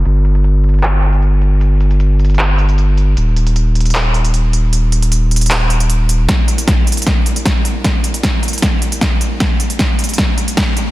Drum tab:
HH |x---x-x-x---xxxxx---x-x-x---x---|x---x-x-x---xxxxx---x-x-x---x---|x---x-x-x---xxxxx---x-x-x---x---|x---x-x-x---xxxxx---x-x-x---x---|
CP |----------------x---------------|----------------x---------------|----------------x---------------|----------------x---------------|
SD |--------------------------------|--------------------------------|--------------------------------|--------------------------------|
BD |--------------------------------|--------------------------------|--------------------------------|--------------------------------|

HH |x---x-x-x---xxxxx---x-x-x---x---|x---x-x-x---xxxxx---x-x-x---x---|x---x-x-x---xxxx----x-x-x---x---|
CP |--------------------------------|--------------------------------|--------------------------------|
SD |o-------o-------o-------o-------|o-------o-------o-------o-------|o-------o-------o-------o-------|
BD |o-------o-------o-------o-------|o-------o-------o-------o-------|o-------o-------o-------o-------|